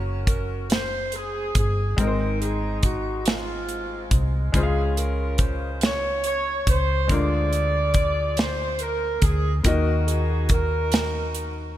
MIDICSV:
0, 0, Header, 1, 5, 480
1, 0, Start_track
1, 0, Key_signature, -5, "major"
1, 0, Tempo, 852273
1, 1113, Time_signature, 6, 3, 24, 8
1, 6632, End_track
2, 0, Start_track
2, 0, Title_t, "Saxophone section"
2, 0, Program_c, 0, 65
2, 0, Note_on_c, 0, 61, 55
2, 0, Note_on_c, 0, 66, 49
2, 158, Note_on_c, 0, 70, 71
2, 371, Note_off_c, 0, 61, 0
2, 371, Note_off_c, 0, 66, 0
2, 379, Note_off_c, 0, 70, 0
2, 399, Note_on_c, 0, 72, 64
2, 636, Note_off_c, 0, 72, 0
2, 644, Note_on_c, 0, 68, 65
2, 876, Note_off_c, 0, 68, 0
2, 883, Note_on_c, 0, 68, 61
2, 1102, Note_off_c, 0, 68, 0
2, 1126, Note_on_c, 0, 63, 57
2, 1129, Note_on_c, 0, 70, 67
2, 1361, Note_off_c, 0, 70, 0
2, 1361, Note_on_c, 0, 68, 67
2, 1581, Note_off_c, 0, 68, 0
2, 1602, Note_on_c, 0, 66, 64
2, 1818, Note_off_c, 0, 63, 0
2, 1838, Note_off_c, 0, 66, 0
2, 1847, Note_on_c, 0, 60, 47
2, 1849, Note_on_c, 0, 56, 46
2, 1851, Note_on_c, 0, 65, 66
2, 2360, Note_off_c, 0, 65, 0
2, 2538, Note_off_c, 0, 60, 0
2, 2539, Note_off_c, 0, 56, 0
2, 2563, Note_on_c, 0, 68, 70
2, 2564, Note_on_c, 0, 61, 54
2, 2564, Note_on_c, 0, 65, 55
2, 2782, Note_off_c, 0, 68, 0
2, 2799, Note_on_c, 0, 70, 70
2, 3037, Note_off_c, 0, 70, 0
2, 3040, Note_on_c, 0, 72, 71
2, 3257, Note_off_c, 0, 61, 0
2, 3257, Note_off_c, 0, 65, 0
2, 3277, Note_off_c, 0, 72, 0
2, 3285, Note_on_c, 0, 73, 69
2, 3516, Note_off_c, 0, 73, 0
2, 3523, Note_on_c, 0, 73, 82
2, 3743, Note_off_c, 0, 73, 0
2, 3766, Note_on_c, 0, 72, 74
2, 4000, Note_off_c, 0, 72, 0
2, 4010, Note_on_c, 0, 65, 61
2, 4011, Note_on_c, 0, 74, 97
2, 4012, Note_on_c, 0, 68, 61
2, 4700, Note_off_c, 0, 65, 0
2, 4701, Note_off_c, 0, 68, 0
2, 4721, Note_on_c, 0, 72, 73
2, 4723, Note_off_c, 0, 74, 0
2, 4958, Note_off_c, 0, 72, 0
2, 4962, Note_on_c, 0, 70, 82
2, 5194, Note_on_c, 0, 68, 70
2, 5198, Note_off_c, 0, 70, 0
2, 5363, Note_off_c, 0, 68, 0
2, 5435, Note_on_c, 0, 70, 75
2, 5436, Note_on_c, 0, 66, 58
2, 5437, Note_on_c, 0, 63, 58
2, 5658, Note_off_c, 0, 70, 0
2, 5674, Note_on_c, 0, 68, 70
2, 5914, Note_off_c, 0, 63, 0
2, 5914, Note_off_c, 0, 68, 0
2, 5919, Note_off_c, 0, 66, 0
2, 5921, Note_on_c, 0, 63, 66
2, 5921, Note_on_c, 0, 70, 86
2, 5926, Note_on_c, 0, 66, 61
2, 6485, Note_off_c, 0, 70, 0
2, 6615, Note_off_c, 0, 63, 0
2, 6617, Note_off_c, 0, 66, 0
2, 6632, End_track
3, 0, Start_track
3, 0, Title_t, "Upright piano"
3, 0, Program_c, 1, 0
3, 0, Control_c, 1, 64, 127
3, 0, Note_on_c, 1, 58, 48
3, 0, Note_on_c, 1, 61, 45
3, 0, Note_on_c, 1, 66, 46
3, 0, Note_on_c, 1, 70, 55
3, 1085, Note_off_c, 1, 58, 0
3, 1090, Note_off_c, 1, 61, 0
3, 1093, Note_off_c, 1, 66, 0
3, 1096, Note_off_c, 1, 70, 0
3, 1107, Note_on_c, 1, 56, 51
3, 1114, Note_on_c, 1, 60, 48
3, 1117, Note_on_c, 1, 44, 47
3, 1119, Control_c, 1, 64, 0
3, 1123, Note_on_c, 1, 63, 48
3, 1129, Note_on_c, 1, 70, 46
3, 1158, Note_off_c, 1, 70, 0
3, 1167, Note_on_c, 1, 72, 55
3, 1215, Control_c, 1, 64, 127
3, 1813, Note_off_c, 1, 44, 0
3, 2529, Note_off_c, 1, 56, 0
3, 2532, Note_off_c, 1, 60, 0
3, 2537, Note_off_c, 1, 63, 0
3, 2547, Note_on_c, 1, 56, 50
3, 2556, Note_on_c, 1, 61, 44
3, 2558, Note_on_c, 1, 49, 51
3, 2559, Note_off_c, 1, 72, 0
3, 2560, Control_c, 1, 64, 0
3, 2563, Note_on_c, 1, 65, 49
3, 2571, Note_on_c, 1, 72, 42
3, 2599, Note_off_c, 1, 72, 0
3, 2608, Note_on_c, 1, 77, 56
3, 2663, Control_c, 1, 64, 127
3, 3254, Note_off_c, 1, 49, 0
3, 3969, Note_off_c, 1, 56, 0
3, 3973, Note_off_c, 1, 61, 0
3, 3977, Note_off_c, 1, 65, 0
3, 3984, Note_on_c, 1, 56, 47
3, 3993, Note_on_c, 1, 62, 46
3, 3998, Note_on_c, 1, 50, 52
3, 3999, Note_off_c, 1, 77, 0
3, 4002, Control_c, 1, 64, 0
3, 4002, Note_on_c, 1, 65, 44
3, 4008, Note_on_c, 1, 70, 56
3, 4109, Control_c, 1, 64, 127
3, 4694, Note_off_c, 1, 50, 0
3, 5407, Note_off_c, 1, 56, 0
3, 5411, Note_off_c, 1, 62, 0
3, 5416, Note_off_c, 1, 65, 0
3, 5419, Note_off_c, 1, 70, 0
3, 5426, Note_on_c, 1, 58, 51
3, 5435, Note_on_c, 1, 63, 45
3, 5438, Note_on_c, 1, 51, 52
3, 5443, Control_c, 1, 64, 0
3, 5443, Note_on_c, 1, 66, 48
3, 5450, Note_on_c, 1, 75, 60
3, 5539, Control_c, 1, 64, 127
3, 6133, Note_off_c, 1, 51, 0
3, 6632, Note_off_c, 1, 58, 0
3, 6632, Note_off_c, 1, 63, 0
3, 6632, Note_off_c, 1, 66, 0
3, 6632, Note_off_c, 1, 75, 0
3, 6632, End_track
4, 0, Start_track
4, 0, Title_t, "Fingered electric bass"
4, 0, Program_c, 2, 33
4, 0, Note_on_c, 2, 30, 76
4, 849, Note_off_c, 2, 30, 0
4, 873, Note_on_c, 2, 31, 56
4, 1094, Note_off_c, 2, 31, 0
4, 1114, Note_on_c, 2, 32, 76
4, 2292, Note_off_c, 2, 32, 0
4, 2314, Note_on_c, 2, 36, 64
4, 2535, Note_off_c, 2, 36, 0
4, 2555, Note_on_c, 2, 37, 65
4, 3733, Note_off_c, 2, 37, 0
4, 3755, Note_on_c, 2, 37, 61
4, 3976, Note_off_c, 2, 37, 0
4, 3996, Note_on_c, 2, 38, 68
4, 5173, Note_off_c, 2, 38, 0
4, 5191, Note_on_c, 2, 38, 63
4, 5413, Note_off_c, 2, 38, 0
4, 5432, Note_on_c, 2, 39, 76
4, 6632, Note_off_c, 2, 39, 0
4, 6632, End_track
5, 0, Start_track
5, 0, Title_t, "Drums"
5, 153, Note_on_c, 9, 36, 67
5, 154, Note_on_c, 9, 42, 47
5, 209, Note_off_c, 9, 36, 0
5, 211, Note_off_c, 9, 42, 0
5, 394, Note_on_c, 9, 42, 56
5, 406, Note_on_c, 9, 38, 81
5, 450, Note_off_c, 9, 42, 0
5, 462, Note_off_c, 9, 38, 0
5, 631, Note_on_c, 9, 42, 40
5, 687, Note_off_c, 9, 42, 0
5, 873, Note_on_c, 9, 42, 51
5, 874, Note_on_c, 9, 36, 66
5, 929, Note_off_c, 9, 42, 0
5, 930, Note_off_c, 9, 36, 0
5, 1115, Note_on_c, 9, 36, 75
5, 1115, Note_on_c, 9, 42, 55
5, 1171, Note_off_c, 9, 36, 0
5, 1172, Note_off_c, 9, 42, 0
5, 1361, Note_on_c, 9, 42, 40
5, 1417, Note_off_c, 9, 42, 0
5, 1592, Note_on_c, 9, 42, 46
5, 1595, Note_on_c, 9, 36, 66
5, 1648, Note_off_c, 9, 42, 0
5, 1651, Note_off_c, 9, 36, 0
5, 1833, Note_on_c, 9, 42, 53
5, 1846, Note_on_c, 9, 38, 81
5, 1890, Note_off_c, 9, 42, 0
5, 1902, Note_off_c, 9, 38, 0
5, 2076, Note_on_c, 9, 42, 38
5, 2132, Note_off_c, 9, 42, 0
5, 2315, Note_on_c, 9, 42, 51
5, 2316, Note_on_c, 9, 36, 70
5, 2372, Note_off_c, 9, 36, 0
5, 2372, Note_off_c, 9, 42, 0
5, 2556, Note_on_c, 9, 36, 77
5, 2557, Note_on_c, 9, 42, 52
5, 2612, Note_off_c, 9, 36, 0
5, 2613, Note_off_c, 9, 42, 0
5, 2800, Note_on_c, 9, 42, 42
5, 2857, Note_off_c, 9, 42, 0
5, 3030, Note_on_c, 9, 42, 49
5, 3035, Note_on_c, 9, 36, 65
5, 3087, Note_off_c, 9, 42, 0
5, 3091, Note_off_c, 9, 36, 0
5, 3274, Note_on_c, 9, 42, 56
5, 3286, Note_on_c, 9, 38, 83
5, 3330, Note_off_c, 9, 42, 0
5, 3342, Note_off_c, 9, 38, 0
5, 3513, Note_on_c, 9, 42, 43
5, 3569, Note_off_c, 9, 42, 0
5, 3757, Note_on_c, 9, 36, 71
5, 3757, Note_on_c, 9, 42, 52
5, 3813, Note_off_c, 9, 36, 0
5, 3813, Note_off_c, 9, 42, 0
5, 3995, Note_on_c, 9, 42, 58
5, 3996, Note_on_c, 9, 36, 77
5, 4052, Note_off_c, 9, 36, 0
5, 4052, Note_off_c, 9, 42, 0
5, 4239, Note_on_c, 9, 42, 40
5, 4295, Note_off_c, 9, 42, 0
5, 4471, Note_on_c, 9, 42, 45
5, 4475, Note_on_c, 9, 36, 66
5, 4527, Note_off_c, 9, 42, 0
5, 4531, Note_off_c, 9, 36, 0
5, 4714, Note_on_c, 9, 42, 53
5, 4726, Note_on_c, 9, 38, 85
5, 4770, Note_off_c, 9, 42, 0
5, 4782, Note_off_c, 9, 38, 0
5, 4950, Note_on_c, 9, 42, 41
5, 5006, Note_off_c, 9, 42, 0
5, 5191, Note_on_c, 9, 42, 56
5, 5193, Note_on_c, 9, 36, 69
5, 5247, Note_off_c, 9, 42, 0
5, 5250, Note_off_c, 9, 36, 0
5, 5431, Note_on_c, 9, 42, 63
5, 5433, Note_on_c, 9, 36, 78
5, 5488, Note_off_c, 9, 42, 0
5, 5489, Note_off_c, 9, 36, 0
5, 5677, Note_on_c, 9, 42, 41
5, 5733, Note_off_c, 9, 42, 0
5, 5907, Note_on_c, 9, 42, 47
5, 5912, Note_on_c, 9, 36, 72
5, 5963, Note_off_c, 9, 42, 0
5, 5968, Note_off_c, 9, 36, 0
5, 6148, Note_on_c, 9, 42, 54
5, 6160, Note_on_c, 9, 38, 85
5, 6205, Note_off_c, 9, 42, 0
5, 6217, Note_off_c, 9, 38, 0
5, 6390, Note_on_c, 9, 42, 40
5, 6446, Note_off_c, 9, 42, 0
5, 6632, End_track
0, 0, End_of_file